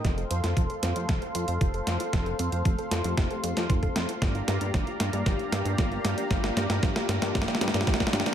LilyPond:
<<
  \new Staff \with { instrumentName = "Analog synth pad" } { \time 4/4 \key f \mixolydian \tempo 4 = 115 <a' c'' f'' c'''>1~ | <a' c'' f'' c'''>1 | <g' d'' f'' bes''>1~ | <g' d'' f'' bes''>1 | }
  \new Staff \with { instrumentName = "Analog polysynth" } { \time 4/4 \key f \mixolydian <a c' f' a'>4.~ <a c' f' a'>16 <a c' f' g'>4. <a c' f' a'>8. | <a c' f' a'>4.~ <a c' f' a'>16 <a c' f' g'>4. <a c' f' a'>8. | <bes d' f' g'>4.~ <bes d' f' g'>16 <bes d' f' g'>4. <bes d' f' g'>8. | <bes d' f' g'>4.~ <bes d' f' g'>16 <bes d' f' g'>4. <bes d' f' g'>8. | }
  \new Staff \with { instrumentName = "Synth arpeggio sound" } { \time 4/4 \key f \mixolydian f16 a'16 c'16 f'16 f16 a'16 c'16 f'16 f16 a'16 c'16 f'16 f16 a'16 c'16 f'16 | f16 a'16 c'16 f'16 f16 a'16 c'16 f'16 f16 a'16 c'16 f'16 f16 a'16 c'16 f'16 | f16 f'16 bes16 d'16 f16 f'16 bes16 d'16 f16 f'16 bes16 d'16 f16 f'16 bes16 d'16 | f16 f'16 bes16 d'16 f16 f'16 bes16 d'16 f16 f'16 bes16 d'16 f16 f'16 bes16 d'16 | }
  \new Staff \with { instrumentName = "Analog synth bass" } { \clef bass \time 4/4 \key f \mixolydian f,,8 f,16 f,16 f,,16 r16 f,16 f,16 f,,16 r16 f,16 f,16 f,,8 f,16 r16 | f,,8 f,16 f,16 f,,16 r16 f,16 f,16 f,,16 r16 f,16 f,16 f,,8 f,16 r16 | g,,8 g,16 g,16 g,,16 r16 g,16 g,16 g,,16 r16 g,16 g,16 g,,8 g,16 r16 | g,,8 g,16 g,16 g,,16 r16 g,16 g,16 g,,16 r16 g,16 g,16 g,,16 r16 g,16 r16 | }
  \new DrumStaff \with { instrumentName = "Drums" } \drummode { \time 4/4 <hh bd sn>16 hh16 hh16 <hh sn>16 <hh bd>16 hh16 <hh sn>16 hh16 <hh bd sn>16 hh16 hh16 hh16 <hh bd>16 hh16 <hh sn>16 hh16 | <hh bd sn>16 hh16 hh16 hh16 <hh bd>16 hh16 <hh sn>16 hh16 <hh bd sn>16 hh16 hh16 <hh sn>16 <hh bd>16 <hh bd>16 <hh sn>16 hh16 | <hh bd sn>16 hh16 <hh sn>16 hh16 <hh bd sn>16 hh16 <hh sn>16 hh16 <hh bd sn>16 hh16 <hh sn>16 hh16 <hh bd sn>16 hh16 <hh sn>16 hh16 | <hh bd sn>16 <hh sn>16 <hh sn>16 <hh sn>16 <hh bd sn>16 <hh sn>16 <hh sn>16 <hh sn>16 <hh bd sn>32 sn32 <hh sn>32 sn32 <hh sn>32 sn32 <hh sn>32 sn32 <hh bd sn>32 sn32 <hh bd sn>32 sn32 <hh sn>32 sn32 <hh sn>16 | }
>>